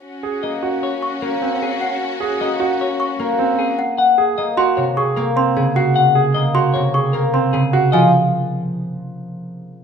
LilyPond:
<<
  \new Staff \with { instrumentName = "Celesta" } { \time 5/4 \key aes \mixolydian \tempo 4 = 152 r2 r8 des'''8 r4. ges''8 | r2 r8 des'''8 r4. ges''8 | r4. c'''8 r8 des'''8 r8 c'''8 r8 ges''8 | r4. c'''8 r8 des'''8 r8 c'''8 r8 ges''8 |
aes''8 r1 r8 | }
  \new Staff \with { instrumentName = "Clean electric guitar" } { \time 5/4 \key aes \mixolydian r4 ees''8 r8 des''8 r8 bes'8 r8 aes'8 r8 | r4 ees''8 r8 des''8 r8 bes'8 r8 aes'8 r8 | ges''8 r8 ees''8 r8 des''8 r8 bes'8 r8 aes'8 r8 | ges''8 r8 ees''8 r8 des''8 r8 bes'8 r8 aes'8 r8 |
ees''8 r1 r8 | }
  \new Staff \with { instrumentName = "Grand piano" } { \time 5/4 \key aes \mixolydian r8 aes'8 r8 ges'8 r4. c'8 r4 | r8 aes'8 r8 ges'8 r4. c'8 r4 | r8 aes'8 r8 ges'8 r8 aes'8 r8 c'8 r8 ges'8 | r8 aes'8 r8 ges'8 r8 aes'8 r8 c'8 r8 ges'8 |
f'8 r1 r8 | }
  \new Staff \with { instrumentName = "String section" } { \time 5/4 \key aes \mixolydian <des' ges'>1~ <des' ges'>4~ | <des' ges'>1~ <des' ges'>8 r8 | r1 r4 | r1 r4 |
r1 r4 | }
  \new Staff \with { instrumentName = "Harp" } { \time 5/4 \key aes \mixolydian r4 bes2 bes2~ | bes4 bes2 bes2~ | bes4 bes4 c4 bes4 des4~ | des4 bes4 c4 bes4 des4 |
f8 r1 r8 | }
>>